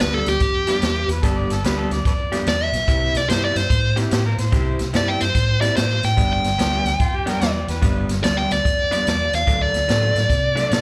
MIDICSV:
0, 0, Header, 1, 6, 480
1, 0, Start_track
1, 0, Tempo, 412088
1, 1437, Time_signature, 4, 2, 24, 8
1, 12593, End_track
2, 0, Start_track
2, 0, Title_t, "Lead electric guitar"
2, 0, Program_c, 0, 29
2, 9, Note_on_c, 0, 71, 76
2, 159, Note_off_c, 0, 71, 0
2, 172, Note_on_c, 0, 69, 71
2, 320, Note_off_c, 0, 69, 0
2, 336, Note_on_c, 0, 67, 84
2, 1258, Note_off_c, 0, 67, 0
2, 2895, Note_on_c, 0, 74, 89
2, 3069, Note_off_c, 0, 74, 0
2, 3069, Note_on_c, 0, 76, 75
2, 3673, Note_off_c, 0, 76, 0
2, 3694, Note_on_c, 0, 74, 85
2, 3833, Note_off_c, 0, 74, 0
2, 3838, Note_on_c, 0, 72, 78
2, 3991, Note_off_c, 0, 72, 0
2, 4016, Note_on_c, 0, 74, 75
2, 4152, Note_off_c, 0, 74, 0
2, 4152, Note_on_c, 0, 72, 85
2, 4619, Note_off_c, 0, 72, 0
2, 5781, Note_on_c, 0, 74, 87
2, 5919, Note_on_c, 0, 79, 76
2, 5923, Note_off_c, 0, 74, 0
2, 6065, Note_on_c, 0, 72, 71
2, 6071, Note_off_c, 0, 79, 0
2, 6531, Note_off_c, 0, 72, 0
2, 6536, Note_on_c, 0, 74, 82
2, 6699, Note_off_c, 0, 74, 0
2, 6715, Note_on_c, 0, 72, 77
2, 7024, Note_off_c, 0, 72, 0
2, 7043, Note_on_c, 0, 79, 77
2, 7348, Note_off_c, 0, 79, 0
2, 7370, Note_on_c, 0, 79, 84
2, 8759, Note_off_c, 0, 79, 0
2, 9595, Note_on_c, 0, 74, 88
2, 9749, Note_off_c, 0, 74, 0
2, 9751, Note_on_c, 0, 79, 72
2, 9907, Note_off_c, 0, 79, 0
2, 9922, Note_on_c, 0, 74, 64
2, 10383, Note_off_c, 0, 74, 0
2, 10405, Note_on_c, 0, 74, 82
2, 10555, Note_off_c, 0, 74, 0
2, 10591, Note_on_c, 0, 74, 74
2, 10883, Note_off_c, 0, 74, 0
2, 10891, Note_on_c, 0, 77, 74
2, 11193, Note_off_c, 0, 77, 0
2, 11210, Note_on_c, 0, 74, 89
2, 12593, Note_off_c, 0, 74, 0
2, 12593, End_track
3, 0, Start_track
3, 0, Title_t, "Harmonica"
3, 0, Program_c, 1, 22
3, 1284, Note_on_c, 1, 71, 82
3, 1440, Note_on_c, 1, 69, 87
3, 1458, Note_off_c, 1, 71, 0
3, 1604, Note_on_c, 1, 74, 78
3, 1622, Note_off_c, 1, 69, 0
3, 1766, Note_on_c, 1, 69, 78
3, 1784, Note_off_c, 1, 74, 0
3, 1912, Note_on_c, 1, 71, 78
3, 1929, Note_off_c, 1, 69, 0
3, 2084, Note_on_c, 1, 69, 87
3, 2102, Note_off_c, 1, 71, 0
3, 2232, Note_off_c, 1, 69, 0
3, 2239, Note_on_c, 1, 74, 74
3, 2393, Note_off_c, 1, 74, 0
3, 2403, Note_on_c, 1, 69, 51
3, 2403, Note_on_c, 1, 71, 51
3, 2403, Note_on_c, 1, 74, 73
3, 2478, Note_off_c, 1, 71, 0
3, 2482, Note_off_c, 1, 69, 0
3, 2782, Note_off_c, 1, 74, 0
3, 4784, Note_on_c, 1, 67, 89
3, 4944, Note_off_c, 1, 67, 0
3, 4958, Note_on_c, 1, 70, 78
3, 5108, Note_off_c, 1, 70, 0
3, 5115, Note_on_c, 1, 72, 88
3, 5652, Note_off_c, 1, 72, 0
3, 8163, Note_on_c, 1, 65, 90
3, 8329, Note_on_c, 1, 67, 78
3, 8347, Note_off_c, 1, 65, 0
3, 8485, Note_on_c, 1, 70, 93
3, 8502, Note_off_c, 1, 67, 0
3, 8634, Note_off_c, 1, 70, 0
3, 8639, Note_on_c, 1, 74, 77
3, 8946, Note_off_c, 1, 74, 0
3, 8955, Note_on_c, 1, 71, 71
3, 9420, Note_off_c, 1, 71, 0
3, 12593, End_track
4, 0, Start_track
4, 0, Title_t, "Clean electric guitar"
4, 0, Program_c, 2, 27
4, 0, Note_on_c, 2, 55, 80
4, 0, Note_on_c, 2, 59, 76
4, 0, Note_on_c, 2, 62, 79
4, 8, Note_on_c, 2, 67, 83
4, 355, Note_off_c, 2, 55, 0
4, 358, Note_off_c, 2, 59, 0
4, 359, Note_off_c, 2, 62, 0
4, 363, Note_off_c, 2, 67, 0
4, 786, Note_on_c, 2, 67, 87
4, 796, Note_on_c, 2, 62, 89
4, 797, Note_on_c, 2, 59, 87
4, 804, Note_on_c, 2, 55, 77
4, 1050, Note_off_c, 2, 67, 0
4, 1055, Note_off_c, 2, 59, 0
4, 1055, Note_off_c, 2, 62, 0
4, 1059, Note_off_c, 2, 55, 0
4, 1439, Note_on_c, 2, 55, 72
4, 1442, Note_on_c, 2, 59, 78
4, 1445, Note_on_c, 2, 62, 77
4, 1450, Note_on_c, 2, 67, 76
4, 1798, Note_off_c, 2, 55, 0
4, 1800, Note_off_c, 2, 59, 0
4, 1801, Note_off_c, 2, 62, 0
4, 1804, Note_off_c, 2, 67, 0
4, 1918, Note_on_c, 2, 55, 73
4, 1925, Note_on_c, 2, 59, 66
4, 1929, Note_on_c, 2, 67, 79
4, 1930, Note_on_c, 2, 62, 79
4, 2277, Note_off_c, 2, 55, 0
4, 2281, Note_off_c, 2, 59, 0
4, 2283, Note_off_c, 2, 62, 0
4, 2283, Note_off_c, 2, 67, 0
4, 2701, Note_on_c, 2, 67, 77
4, 2706, Note_on_c, 2, 62, 80
4, 2710, Note_on_c, 2, 59, 70
4, 2711, Note_on_c, 2, 55, 66
4, 2966, Note_off_c, 2, 67, 0
4, 2969, Note_off_c, 2, 62, 0
4, 2971, Note_off_c, 2, 55, 0
4, 2971, Note_off_c, 2, 59, 0
4, 3350, Note_on_c, 2, 48, 66
4, 3352, Note_on_c, 2, 60, 76
4, 3361, Note_on_c, 2, 64, 79
4, 3361, Note_on_c, 2, 67, 73
4, 3713, Note_off_c, 2, 48, 0
4, 3714, Note_off_c, 2, 60, 0
4, 3718, Note_off_c, 2, 64, 0
4, 3718, Note_off_c, 2, 67, 0
4, 3819, Note_on_c, 2, 48, 69
4, 3830, Note_on_c, 2, 60, 75
4, 3832, Note_on_c, 2, 64, 88
4, 3834, Note_on_c, 2, 67, 83
4, 4187, Note_off_c, 2, 48, 0
4, 4193, Note_off_c, 2, 60, 0
4, 4194, Note_off_c, 2, 64, 0
4, 4194, Note_off_c, 2, 67, 0
4, 4615, Note_on_c, 2, 67, 94
4, 4625, Note_on_c, 2, 60, 80
4, 4626, Note_on_c, 2, 64, 79
4, 4628, Note_on_c, 2, 48, 68
4, 4883, Note_off_c, 2, 67, 0
4, 4887, Note_off_c, 2, 60, 0
4, 4888, Note_off_c, 2, 64, 0
4, 4889, Note_off_c, 2, 48, 0
4, 5264, Note_on_c, 2, 48, 82
4, 5271, Note_on_c, 2, 60, 76
4, 5278, Note_on_c, 2, 64, 78
4, 5281, Note_on_c, 2, 67, 97
4, 5629, Note_off_c, 2, 48, 0
4, 5633, Note_off_c, 2, 60, 0
4, 5636, Note_off_c, 2, 64, 0
4, 5638, Note_off_c, 2, 67, 0
4, 5744, Note_on_c, 2, 48, 69
4, 5750, Note_on_c, 2, 60, 85
4, 5752, Note_on_c, 2, 64, 82
4, 5756, Note_on_c, 2, 67, 69
4, 6109, Note_off_c, 2, 48, 0
4, 6112, Note_off_c, 2, 60, 0
4, 6113, Note_off_c, 2, 64, 0
4, 6115, Note_off_c, 2, 67, 0
4, 6533, Note_on_c, 2, 67, 82
4, 6538, Note_on_c, 2, 64, 77
4, 6539, Note_on_c, 2, 60, 82
4, 6547, Note_on_c, 2, 48, 72
4, 6801, Note_off_c, 2, 67, 0
4, 6804, Note_off_c, 2, 60, 0
4, 6804, Note_off_c, 2, 64, 0
4, 6808, Note_off_c, 2, 48, 0
4, 7186, Note_on_c, 2, 43, 68
4, 7193, Note_on_c, 2, 55, 74
4, 7198, Note_on_c, 2, 59, 81
4, 7202, Note_on_c, 2, 62, 94
4, 7550, Note_off_c, 2, 43, 0
4, 7554, Note_off_c, 2, 55, 0
4, 7556, Note_off_c, 2, 59, 0
4, 7558, Note_off_c, 2, 62, 0
4, 7664, Note_on_c, 2, 43, 73
4, 7670, Note_on_c, 2, 55, 81
4, 7675, Note_on_c, 2, 59, 82
4, 7680, Note_on_c, 2, 62, 81
4, 8029, Note_off_c, 2, 43, 0
4, 8032, Note_off_c, 2, 55, 0
4, 8034, Note_off_c, 2, 59, 0
4, 8037, Note_off_c, 2, 62, 0
4, 8456, Note_on_c, 2, 62, 93
4, 8464, Note_on_c, 2, 59, 86
4, 8471, Note_on_c, 2, 43, 71
4, 8471, Note_on_c, 2, 55, 85
4, 8723, Note_off_c, 2, 62, 0
4, 8727, Note_off_c, 2, 59, 0
4, 8730, Note_off_c, 2, 43, 0
4, 8730, Note_off_c, 2, 55, 0
4, 9102, Note_on_c, 2, 43, 71
4, 9107, Note_on_c, 2, 55, 83
4, 9114, Note_on_c, 2, 62, 79
4, 9115, Note_on_c, 2, 59, 84
4, 9468, Note_off_c, 2, 43, 0
4, 9470, Note_off_c, 2, 55, 0
4, 9474, Note_off_c, 2, 59, 0
4, 9474, Note_off_c, 2, 62, 0
4, 9589, Note_on_c, 2, 43, 65
4, 9595, Note_on_c, 2, 55, 88
4, 9596, Note_on_c, 2, 59, 73
4, 9605, Note_on_c, 2, 62, 82
4, 9952, Note_off_c, 2, 43, 0
4, 9954, Note_off_c, 2, 55, 0
4, 9955, Note_off_c, 2, 59, 0
4, 9960, Note_off_c, 2, 62, 0
4, 10380, Note_on_c, 2, 62, 91
4, 10383, Note_on_c, 2, 59, 88
4, 10387, Note_on_c, 2, 55, 76
4, 10392, Note_on_c, 2, 43, 71
4, 10645, Note_off_c, 2, 62, 0
4, 10647, Note_off_c, 2, 59, 0
4, 10648, Note_off_c, 2, 55, 0
4, 10651, Note_off_c, 2, 43, 0
4, 11031, Note_on_c, 2, 50, 83
4, 11036, Note_on_c, 2, 54, 76
4, 11041, Note_on_c, 2, 62, 84
4, 11042, Note_on_c, 2, 57, 78
4, 11393, Note_off_c, 2, 50, 0
4, 11396, Note_off_c, 2, 54, 0
4, 11398, Note_off_c, 2, 62, 0
4, 11399, Note_off_c, 2, 57, 0
4, 11505, Note_on_c, 2, 50, 70
4, 11514, Note_on_c, 2, 54, 76
4, 11515, Note_on_c, 2, 57, 88
4, 11522, Note_on_c, 2, 62, 86
4, 11870, Note_off_c, 2, 50, 0
4, 11875, Note_off_c, 2, 54, 0
4, 11875, Note_off_c, 2, 57, 0
4, 11879, Note_off_c, 2, 62, 0
4, 12293, Note_on_c, 2, 62, 101
4, 12297, Note_on_c, 2, 57, 85
4, 12301, Note_on_c, 2, 54, 73
4, 12306, Note_on_c, 2, 50, 73
4, 12562, Note_off_c, 2, 62, 0
4, 12565, Note_off_c, 2, 57, 0
4, 12567, Note_off_c, 2, 54, 0
4, 12569, Note_off_c, 2, 50, 0
4, 12593, End_track
5, 0, Start_track
5, 0, Title_t, "Fingered electric bass"
5, 0, Program_c, 3, 33
5, 5, Note_on_c, 3, 38, 91
5, 256, Note_off_c, 3, 38, 0
5, 311, Note_on_c, 3, 38, 85
5, 450, Note_off_c, 3, 38, 0
5, 478, Note_on_c, 3, 41, 92
5, 872, Note_off_c, 3, 41, 0
5, 956, Note_on_c, 3, 40, 94
5, 1210, Note_off_c, 3, 40, 0
5, 1259, Note_on_c, 3, 40, 88
5, 1402, Note_off_c, 3, 40, 0
5, 1434, Note_on_c, 3, 31, 82
5, 1689, Note_off_c, 3, 31, 0
5, 1748, Note_on_c, 3, 31, 81
5, 1887, Note_off_c, 3, 31, 0
5, 1914, Note_on_c, 3, 38, 79
5, 2169, Note_off_c, 3, 38, 0
5, 2220, Note_on_c, 3, 38, 80
5, 2363, Note_off_c, 3, 38, 0
5, 2391, Note_on_c, 3, 41, 81
5, 2787, Note_off_c, 3, 41, 0
5, 2867, Note_on_c, 3, 40, 74
5, 3124, Note_off_c, 3, 40, 0
5, 3172, Note_on_c, 3, 35, 90
5, 3317, Note_off_c, 3, 35, 0
5, 3356, Note_on_c, 3, 36, 83
5, 3610, Note_off_c, 3, 36, 0
5, 3656, Note_on_c, 3, 36, 73
5, 3799, Note_off_c, 3, 36, 0
5, 3833, Note_on_c, 3, 43, 86
5, 4088, Note_off_c, 3, 43, 0
5, 4141, Note_on_c, 3, 43, 90
5, 4282, Note_off_c, 3, 43, 0
5, 4315, Note_on_c, 3, 45, 80
5, 4709, Note_off_c, 3, 45, 0
5, 4792, Note_on_c, 3, 45, 94
5, 5047, Note_off_c, 3, 45, 0
5, 5100, Note_on_c, 3, 45, 93
5, 5241, Note_off_c, 3, 45, 0
5, 5272, Note_on_c, 3, 36, 91
5, 5527, Note_off_c, 3, 36, 0
5, 5593, Note_on_c, 3, 36, 81
5, 5729, Note_off_c, 3, 36, 0
5, 5754, Note_on_c, 3, 43, 82
5, 6007, Note_off_c, 3, 43, 0
5, 6072, Note_on_c, 3, 43, 75
5, 6208, Note_off_c, 3, 43, 0
5, 6231, Note_on_c, 3, 45, 82
5, 6626, Note_off_c, 3, 45, 0
5, 6723, Note_on_c, 3, 45, 83
5, 6973, Note_off_c, 3, 45, 0
5, 7032, Note_on_c, 3, 45, 92
5, 7168, Note_off_c, 3, 45, 0
5, 7189, Note_on_c, 3, 31, 92
5, 7444, Note_off_c, 3, 31, 0
5, 7502, Note_on_c, 3, 31, 75
5, 7642, Note_off_c, 3, 31, 0
5, 7680, Note_on_c, 3, 38, 90
5, 7931, Note_off_c, 3, 38, 0
5, 7974, Note_on_c, 3, 38, 80
5, 8118, Note_off_c, 3, 38, 0
5, 8151, Note_on_c, 3, 41, 94
5, 8546, Note_off_c, 3, 41, 0
5, 8628, Note_on_c, 3, 40, 83
5, 8884, Note_off_c, 3, 40, 0
5, 8942, Note_on_c, 3, 40, 94
5, 9082, Note_off_c, 3, 40, 0
5, 9111, Note_on_c, 3, 31, 89
5, 9366, Note_off_c, 3, 31, 0
5, 9422, Note_on_c, 3, 31, 82
5, 9562, Note_off_c, 3, 31, 0
5, 9598, Note_on_c, 3, 38, 87
5, 9850, Note_off_c, 3, 38, 0
5, 9916, Note_on_c, 3, 38, 78
5, 10051, Note_off_c, 3, 38, 0
5, 10077, Note_on_c, 3, 41, 83
5, 10470, Note_off_c, 3, 41, 0
5, 10564, Note_on_c, 3, 40, 85
5, 10814, Note_off_c, 3, 40, 0
5, 10872, Note_on_c, 3, 40, 97
5, 11009, Note_off_c, 3, 40, 0
5, 11037, Note_on_c, 3, 38, 85
5, 11290, Note_off_c, 3, 38, 0
5, 11336, Note_on_c, 3, 38, 79
5, 11480, Note_off_c, 3, 38, 0
5, 11519, Note_on_c, 3, 45, 85
5, 11771, Note_off_c, 3, 45, 0
5, 11824, Note_on_c, 3, 45, 81
5, 11964, Note_off_c, 3, 45, 0
5, 11993, Note_on_c, 3, 48, 90
5, 12389, Note_off_c, 3, 48, 0
5, 12475, Note_on_c, 3, 47, 78
5, 12593, Note_off_c, 3, 47, 0
5, 12593, End_track
6, 0, Start_track
6, 0, Title_t, "Drums"
6, 10, Note_on_c, 9, 38, 107
6, 127, Note_off_c, 9, 38, 0
6, 304, Note_on_c, 9, 42, 56
6, 322, Note_on_c, 9, 38, 27
6, 421, Note_off_c, 9, 42, 0
6, 438, Note_off_c, 9, 38, 0
6, 466, Note_on_c, 9, 42, 74
6, 474, Note_on_c, 9, 36, 97
6, 484, Note_on_c, 9, 38, 32
6, 583, Note_off_c, 9, 42, 0
6, 590, Note_off_c, 9, 36, 0
6, 600, Note_off_c, 9, 38, 0
6, 778, Note_on_c, 9, 42, 59
6, 796, Note_on_c, 9, 38, 33
6, 895, Note_off_c, 9, 42, 0
6, 912, Note_off_c, 9, 38, 0
6, 951, Note_on_c, 9, 42, 82
6, 968, Note_on_c, 9, 38, 110
6, 1067, Note_off_c, 9, 42, 0
6, 1085, Note_off_c, 9, 38, 0
6, 1268, Note_on_c, 9, 42, 62
6, 1285, Note_on_c, 9, 38, 33
6, 1384, Note_off_c, 9, 42, 0
6, 1402, Note_off_c, 9, 38, 0
6, 1432, Note_on_c, 9, 42, 89
6, 1434, Note_on_c, 9, 36, 106
6, 1450, Note_on_c, 9, 38, 35
6, 1549, Note_off_c, 9, 42, 0
6, 1551, Note_off_c, 9, 36, 0
6, 1566, Note_off_c, 9, 38, 0
6, 1748, Note_on_c, 9, 42, 55
6, 1765, Note_on_c, 9, 38, 32
6, 1864, Note_off_c, 9, 42, 0
6, 1882, Note_off_c, 9, 38, 0
6, 1913, Note_on_c, 9, 42, 85
6, 1931, Note_on_c, 9, 38, 117
6, 2030, Note_off_c, 9, 42, 0
6, 2047, Note_off_c, 9, 38, 0
6, 2226, Note_on_c, 9, 42, 53
6, 2243, Note_on_c, 9, 38, 29
6, 2342, Note_off_c, 9, 42, 0
6, 2360, Note_off_c, 9, 38, 0
6, 2389, Note_on_c, 9, 42, 72
6, 2392, Note_on_c, 9, 36, 99
6, 2407, Note_on_c, 9, 38, 30
6, 2506, Note_off_c, 9, 42, 0
6, 2508, Note_off_c, 9, 36, 0
6, 2523, Note_off_c, 9, 38, 0
6, 2706, Note_on_c, 9, 42, 56
6, 2723, Note_on_c, 9, 38, 30
6, 2822, Note_off_c, 9, 42, 0
6, 2840, Note_off_c, 9, 38, 0
6, 2871, Note_on_c, 9, 42, 76
6, 2889, Note_on_c, 9, 38, 99
6, 2988, Note_off_c, 9, 42, 0
6, 3005, Note_off_c, 9, 38, 0
6, 3184, Note_on_c, 9, 42, 59
6, 3201, Note_on_c, 9, 38, 37
6, 3300, Note_off_c, 9, 42, 0
6, 3318, Note_off_c, 9, 38, 0
6, 3354, Note_on_c, 9, 36, 109
6, 3358, Note_on_c, 9, 42, 86
6, 3375, Note_on_c, 9, 38, 36
6, 3470, Note_off_c, 9, 36, 0
6, 3474, Note_off_c, 9, 42, 0
6, 3492, Note_off_c, 9, 38, 0
6, 3664, Note_on_c, 9, 42, 56
6, 3681, Note_on_c, 9, 38, 34
6, 3780, Note_off_c, 9, 42, 0
6, 3798, Note_off_c, 9, 38, 0
6, 3837, Note_on_c, 9, 42, 89
6, 3855, Note_on_c, 9, 38, 105
6, 3954, Note_off_c, 9, 42, 0
6, 3971, Note_off_c, 9, 38, 0
6, 4145, Note_on_c, 9, 42, 57
6, 4162, Note_on_c, 9, 38, 33
6, 4261, Note_off_c, 9, 42, 0
6, 4279, Note_off_c, 9, 38, 0
6, 4311, Note_on_c, 9, 36, 102
6, 4313, Note_on_c, 9, 42, 81
6, 4330, Note_on_c, 9, 38, 31
6, 4428, Note_off_c, 9, 36, 0
6, 4429, Note_off_c, 9, 42, 0
6, 4447, Note_off_c, 9, 38, 0
6, 4622, Note_on_c, 9, 42, 56
6, 4640, Note_on_c, 9, 38, 35
6, 4739, Note_off_c, 9, 42, 0
6, 4756, Note_off_c, 9, 38, 0
6, 4788, Note_on_c, 9, 42, 87
6, 4806, Note_on_c, 9, 38, 108
6, 4905, Note_off_c, 9, 42, 0
6, 4922, Note_off_c, 9, 38, 0
6, 5106, Note_on_c, 9, 42, 68
6, 5123, Note_on_c, 9, 38, 35
6, 5222, Note_off_c, 9, 42, 0
6, 5240, Note_off_c, 9, 38, 0
6, 5268, Note_on_c, 9, 42, 89
6, 5270, Note_on_c, 9, 36, 113
6, 5286, Note_on_c, 9, 38, 36
6, 5385, Note_off_c, 9, 42, 0
6, 5387, Note_off_c, 9, 36, 0
6, 5402, Note_off_c, 9, 38, 0
6, 5580, Note_on_c, 9, 42, 59
6, 5597, Note_on_c, 9, 38, 36
6, 5696, Note_off_c, 9, 42, 0
6, 5714, Note_off_c, 9, 38, 0
6, 5748, Note_on_c, 9, 42, 79
6, 5765, Note_on_c, 9, 38, 107
6, 5864, Note_off_c, 9, 42, 0
6, 5882, Note_off_c, 9, 38, 0
6, 6062, Note_on_c, 9, 42, 50
6, 6080, Note_on_c, 9, 38, 30
6, 6179, Note_off_c, 9, 42, 0
6, 6196, Note_off_c, 9, 38, 0
6, 6228, Note_on_c, 9, 42, 77
6, 6230, Note_on_c, 9, 36, 90
6, 6246, Note_on_c, 9, 38, 32
6, 6345, Note_off_c, 9, 42, 0
6, 6347, Note_off_c, 9, 36, 0
6, 6362, Note_off_c, 9, 38, 0
6, 6545, Note_on_c, 9, 42, 60
6, 6562, Note_on_c, 9, 38, 34
6, 6661, Note_off_c, 9, 42, 0
6, 6678, Note_off_c, 9, 38, 0
6, 6714, Note_on_c, 9, 42, 83
6, 6731, Note_on_c, 9, 38, 108
6, 6830, Note_off_c, 9, 42, 0
6, 6848, Note_off_c, 9, 38, 0
6, 7023, Note_on_c, 9, 42, 61
6, 7040, Note_on_c, 9, 38, 34
6, 7139, Note_off_c, 9, 42, 0
6, 7157, Note_off_c, 9, 38, 0
6, 7191, Note_on_c, 9, 36, 113
6, 7192, Note_on_c, 9, 42, 79
6, 7210, Note_on_c, 9, 38, 37
6, 7308, Note_off_c, 9, 36, 0
6, 7309, Note_off_c, 9, 42, 0
6, 7326, Note_off_c, 9, 38, 0
6, 7504, Note_on_c, 9, 42, 55
6, 7521, Note_on_c, 9, 38, 32
6, 7620, Note_off_c, 9, 42, 0
6, 7637, Note_off_c, 9, 38, 0
6, 7676, Note_on_c, 9, 42, 79
6, 7694, Note_on_c, 9, 38, 105
6, 7793, Note_off_c, 9, 42, 0
6, 7810, Note_off_c, 9, 38, 0
6, 7985, Note_on_c, 9, 42, 55
6, 8003, Note_on_c, 9, 38, 31
6, 8102, Note_off_c, 9, 42, 0
6, 8119, Note_off_c, 9, 38, 0
6, 8151, Note_on_c, 9, 42, 68
6, 8152, Note_on_c, 9, 36, 108
6, 8169, Note_on_c, 9, 38, 29
6, 8268, Note_off_c, 9, 42, 0
6, 8269, Note_off_c, 9, 36, 0
6, 8285, Note_off_c, 9, 38, 0
6, 8464, Note_on_c, 9, 42, 62
6, 8481, Note_on_c, 9, 38, 35
6, 8580, Note_off_c, 9, 42, 0
6, 8598, Note_off_c, 9, 38, 0
6, 8635, Note_on_c, 9, 42, 85
6, 8652, Note_on_c, 9, 38, 100
6, 8751, Note_off_c, 9, 42, 0
6, 8768, Note_off_c, 9, 38, 0
6, 8948, Note_on_c, 9, 42, 71
6, 8965, Note_on_c, 9, 38, 33
6, 9064, Note_off_c, 9, 42, 0
6, 9082, Note_off_c, 9, 38, 0
6, 9111, Note_on_c, 9, 42, 92
6, 9114, Note_on_c, 9, 36, 108
6, 9128, Note_on_c, 9, 38, 34
6, 9227, Note_off_c, 9, 42, 0
6, 9230, Note_off_c, 9, 36, 0
6, 9245, Note_off_c, 9, 38, 0
6, 9424, Note_on_c, 9, 42, 63
6, 9442, Note_on_c, 9, 38, 34
6, 9541, Note_off_c, 9, 42, 0
6, 9558, Note_off_c, 9, 38, 0
6, 9595, Note_on_c, 9, 42, 84
6, 9612, Note_on_c, 9, 38, 113
6, 9711, Note_off_c, 9, 42, 0
6, 9729, Note_off_c, 9, 38, 0
6, 9910, Note_on_c, 9, 42, 59
6, 9927, Note_on_c, 9, 38, 29
6, 10026, Note_off_c, 9, 42, 0
6, 10044, Note_off_c, 9, 38, 0
6, 10078, Note_on_c, 9, 36, 101
6, 10081, Note_on_c, 9, 42, 85
6, 10099, Note_on_c, 9, 38, 30
6, 10194, Note_off_c, 9, 36, 0
6, 10198, Note_off_c, 9, 42, 0
6, 10215, Note_off_c, 9, 38, 0
6, 10390, Note_on_c, 9, 42, 56
6, 10407, Note_on_c, 9, 38, 31
6, 10506, Note_off_c, 9, 42, 0
6, 10524, Note_off_c, 9, 38, 0
6, 10561, Note_on_c, 9, 42, 92
6, 10579, Note_on_c, 9, 38, 106
6, 10678, Note_off_c, 9, 42, 0
6, 10695, Note_off_c, 9, 38, 0
6, 10868, Note_on_c, 9, 42, 67
6, 10886, Note_on_c, 9, 38, 34
6, 10985, Note_off_c, 9, 42, 0
6, 11002, Note_off_c, 9, 38, 0
6, 11034, Note_on_c, 9, 36, 106
6, 11038, Note_on_c, 9, 42, 82
6, 11055, Note_on_c, 9, 38, 37
6, 11151, Note_off_c, 9, 36, 0
6, 11154, Note_off_c, 9, 42, 0
6, 11171, Note_off_c, 9, 38, 0
6, 11345, Note_on_c, 9, 42, 60
6, 11362, Note_on_c, 9, 38, 32
6, 11461, Note_off_c, 9, 42, 0
6, 11479, Note_off_c, 9, 38, 0
6, 11514, Note_on_c, 9, 42, 71
6, 11532, Note_on_c, 9, 38, 114
6, 11631, Note_off_c, 9, 42, 0
6, 11648, Note_off_c, 9, 38, 0
6, 11829, Note_on_c, 9, 42, 46
6, 11846, Note_on_c, 9, 38, 29
6, 11945, Note_off_c, 9, 42, 0
6, 11963, Note_off_c, 9, 38, 0
6, 11994, Note_on_c, 9, 36, 101
6, 11997, Note_on_c, 9, 42, 74
6, 12015, Note_on_c, 9, 38, 36
6, 12110, Note_off_c, 9, 36, 0
6, 12114, Note_off_c, 9, 42, 0
6, 12131, Note_off_c, 9, 38, 0
6, 12310, Note_on_c, 9, 42, 58
6, 12327, Note_on_c, 9, 38, 33
6, 12426, Note_off_c, 9, 42, 0
6, 12444, Note_off_c, 9, 38, 0
6, 12478, Note_on_c, 9, 42, 86
6, 12496, Note_on_c, 9, 38, 113
6, 12593, Note_off_c, 9, 38, 0
6, 12593, Note_off_c, 9, 42, 0
6, 12593, End_track
0, 0, End_of_file